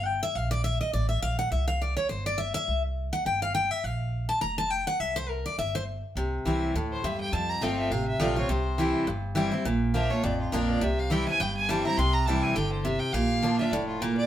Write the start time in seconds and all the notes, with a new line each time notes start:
Already playing: G1
0.06 G5
0.23 E5
0.35 A#1 F5
0.51 D5
0.64 E5
0.81 D#5
0.93 A1 D5
1.09 E5
1.22 A#1 F5
1.39 F#5
1.51 C2 E5
1.68 F5
1.82 D5
1.97 C#5
2.09 G1 C5
2.26 D5
2.38 E5
2.54 E5
2.68 C2
3.13 F#5
3.25 G1 G5
3.42 F5
3.55 G5
3.71 E5
3.84 A#1 F5
4.29 A5
4.41 F1 A#5
4.58 A5
4.70 G5
4.87 F#5
5.00 C2 E5
5.16 C5
5.29 A#4
5.46 D5
5.58 G1 E5
5.75 C5
6.15 C2 C3
6.45 C2 E3 G3 C4 E4
6.74 D2 A2
6.92 C5
7.04 E2 G2 E5
7.20 G5
7.33 F2 A5
7.49 A#5
7.61 G1 F3 A3 C4 F4 G5
7.78 E5
7.90 A1 C3 F5
8.07 E5
8.19 A#1 F3 A3 C4 F4 D5
8.36 C4 F4 C#5
8.49 C2 C3 C5
8.78 E3 G3 C4 E4
9.06 G1 G2
9.35 E3 G3 C4 E4
9.52 C4 E4
9.65 A#1 A#2
9.94 F3 A#3 D4 F4 E5
10.10 D4 F4 C#5
10.23 A1 F2 D5
10.40 F4
10.52 A#1 F3 A#3 D4 F4 A#4
10.69 D5
10.81 C2 C3 E5
10.99 F5
11.10 E3 G3 C4 E4 G5
11.27 C4 E4 G#5
11.39 G1 G2 G5
11.57 G#5
11.69 E3 G3 C4 E4 A5
11.85 C4 E4 A#5
11.97 C2 C3 C6
12.13 A#5
12.26 E3 G3 C4 E4 A5
12.43 G#5
12.55 G1 D3 G5
12.72 C5
12.84 C3 E5
12.99 G5
13.13 A#1 A#2 F5
13.42 F3 A#3 D4 F4
13.58 D4 F4 E5
13.71 F1 A2 D5
13.87 F4
14.00 A#2 A#4
14.17 D5